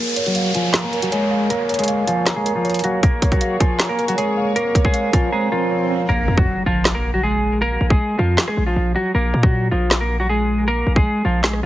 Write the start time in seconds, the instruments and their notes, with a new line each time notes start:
Already playing: string section A#3 G#4 C#5, clean electric guitar A#4, tine electric piano A#4, downlifter
0.00 clean electric guitar A#3
0.16 tine electric piano C#5, closed hi-hat
0.26 clean electric guitar F#3 F#4, closed hi-hat
0.35 tine electric piano F5, closed hi-hat
0.55 clean electric guitar F3 F4, tine electric piano G#5, closed hi-hat
0.74 snare, clap, closed hi-hat
0.84 clean electric guitar A#3 A#4
0.93 tine electric piano A#4, closed hi-hat
1.02 clean electric guitar F#3 F#4, closed hi-hat
1.12 clean electric guitar G#3 G#4, tine electric piano C#5, closed hi-hat
1.31 tine electric piano F5
1.50 clean electric guitar A#3 A#4, tine electric piano A#4, closed hi-hat
1.69 tine electric piano C#5, closed hi-hat
1.74 closed hi-hat
1.79 clean electric guitar G#3 G#4, closed hi-hat
1.84 closed hi-hat
1.88 tine electric piano F5, closed hi-hat
2.07 clean electric guitar F3 F4, tine electric piano G#5, closed hi-hat
2.26 snare, clap, closed hi-hat
2.36 clean electric guitar G#3 G#4
2.46 tine electric piano A#4, closed hi-hat
2.55 clean electric guitar F3 F4
2.65 tine electric piano C#5, closed hi-hat
2.70 closed hi-hat
2.74 closed hi-hat
2.79 closed hi-hat
2.84 clean electric guitar F#3 F#4, tine electric piano F5, closed hi-hat
3.03 clean electric guitar A#3 A#4, tine electric piano A#4, string section C#5, kick, closed hi-hat, swell
3.22 tine electric piano C#5, kick, closed hi-hat
3.32 clean electric guitar F#3 F#4, kick, closed hi-hat
3.41 tine electric piano F5, closed hi-hat
3.60 clean electric guitar F3 F4, tine electric piano G#5, kick, closed hi-hat
3.80 snare, clap, closed hi-hat
3.89 clean electric guitar A#3 A#4
3.99 tine electric piano A#4, closed hi-hat
4.08 clean electric guitar F#3 F#4, closed hi-hat
4.18 clean electric guitar G#3 G#4, tine electric piano C#5, closed hi-hat
4.37 tine electric piano F5
4.56 clean electric guitar A#3 A#4, tine electric piano A#4, closed hi-hat
4.75 tine electric piano C#5, kick, closed hi-hat
4.85 clean electric guitar G#3 G#4, kick
4.94 tine electric piano F5, closed hi-hat
5.13 clean electric guitar F3 F4, tine electric piano G#5, kick, closed hi-hat
5.32 clean electric guitar G#3 G#4, tine electric piano A#5
5.52 clean electric guitar F3 F4, tine electric piano A#4
5.71 tine electric piano C#5
5.90 tine electric piano F5
6.09 808-style bass A#1, clean electric guitar A#3 A#4, impact
6.28 808-style bass F2
6.37 clean electric guitar F#3 F#4, kick
6.66 808-style bass A#1, clean electric guitar F3 F4
6.85 snare, clap
6.95 clean electric guitar A#3 A#4
7.14 clean electric guitar F#3 F#4
7.23 clean electric guitar G#3 G#4
7.62 clean electric guitar A#3 A#4
7.81 808-style bass A#1
7.90 clean electric guitar G#3 G#4, kick
8.19 808-style bass F2, clean electric guitar F3 F4
8.38 snare, clap
8.48 clean electric guitar G#3 G#4, cross-stick
8.57 808-style bass A#1
8.67 clean electric guitar F3 F4
8.76 808-style bass A#1
8.96 clean electric guitar F#3 F#4
9.15 808-style bass A#1, clean electric guitar A#3 A#4
9.34 808-style bass A#2
9.43 clean electric guitar F#3 F#4, kick
9.71 808-style bass A#1, clean electric guitar F3 F4
9.91 snare, clap
10.01 clean electric guitar A#3 A#4
10.20 clean electric guitar F#3 F#4
10.29 clean electric guitar G#3 G#4
10.68 clean electric guitar A#3 A#4
10.87 808-style bass A#1
10.96 clean electric guitar G#3 G#4, kick
11.25 808-style bass A#1, clean electric guitar F3 F4
11.44 clean electric guitar G#3 G#4, snare, clap
11.53 cross-stick